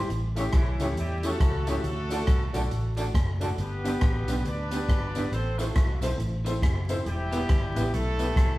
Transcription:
0.10 A1, closed hi-hat
0.35 A3 C#4 E4 G4 C#5, closed hi-hat, tambourine
0.53 B1 E3 C#4 E4, kick, cross-stick, closed hi-hat
0.79 C#2 A3 C#4 E4 G4 C#5, closed hi-hat, tambourine
0.96 E2 G3 E4 G4, closed hi-hat
1.23 A3 C#4 E4 F#4 G4 A4 C#5, closed hi-hat, tambourine
1.40 C#2, kick, cross-stick, closed hi-hat
1.67 A3 C#4 E4 F#4 G4 A4 C#5, closed hi-hat, tambourine
1.84 D2, closed hi-hat
2.10 A3 D4 F#4 A4 D5, closed hi-hat, tambourine
2.27 C2, kick, cross-stick, closed hi-hat
2.53 B1 A3 D4 F#4 A4 D5, closed hi-hat, tambourine
2.71 A1, closed hi-hat
2.97 A3 D4 F#4 A4 D5, closed hi-hat, tambourine
3.14 F#1, kick, cross-stick, closed hi-hat
3.40 A3 D4 F#4 A4 D5, closed hi-hat, tambourine
3.58 G1 B3 G4 B4, closed hi-hat
3.84 B3 D4 G4 B4, closed hi-hat, tambourine
4.01 A1, kick, cross-stick, closed hi-hat
4.28 B1 B3 D4 G4 B4, closed hi-hat, tambourine
4.45 D2 D4 B4 D5, closed hi-hat
4.71 B3 D4 G4 B4, closed hi-hat, tambourine
4.89 G1, kick, cross-stick, closed hi-hat
5.15 B3 D4 G4 B4, closed hi-hat, tambourine
5.32 A1 C4 A4 C5, closed hi-hat
5.58 A3 C4 E4 F#4 A4 C5, closed hi-hat, tambourine
5.76 C2, kick, cross-stick, closed hi-hat
6.01 B1 C4 E4 A4 C5, closed hi-hat, tambourine
6.18 A1, closed hi-hat
6.45 C4 E4 A4 C5, closed hi-hat, tambourine
6.62 F#1, kick, cross-stick, closed hi-hat
6.89 C4 E4 A4 C5, closed hi-hat, tambourine
7.06 E1 G3 E4 G4, closed hi-hat
7.31 B3 E4 G4 B4, closed hi-hat, tambourine
7.49 G1, kick, cross-stick, closed hi-hat
7.75 A1 B3 E4 G4 B4, closed hi-hat, tambourine
7.93 B1 A3 E4 A4, closed hi-hat
8.18 B3 E4 G4 B4, closed hi-hat, tambourine
8.36 C2, kick, cross-stick, closed hi-hat

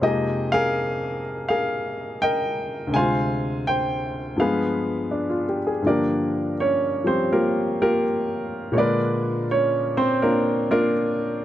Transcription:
0.02 F2 C3 G#3 A#3 D#4 G4 G#4 D#5 G5
0.52 G#4 A#4 F5
1.48 G#4 A#4 F5
2.22 A#4 D#5 G5
2.87 D2 C3
2.94 G#3 C5 F5 G#5
2.98 F4
3.67 C5 G5
4.36 G2 F3 G#3 F5
4.41 B3 G#4 B4
5.11 D4
5.30 F4
5.49 G4
5.67 G#4
5.82 G2 D3 F3
5.87 A#3 D4 G4 A#4 D5
6.60 C#4 C#5
7.04 F3 G3 C4 C5
7.33 A#3 F4 G4 A#4
7.82 A#3 F4 G4 A#4
8.72 A#2 G#3 A#3 C#5
8.76 D3 D4 A#4 B4 D5
9.51 C#4 C#5
9.97 C4 C5
10.22 A#3 D4 F4 A#4
10.71 A#3 D4 F4 A#4

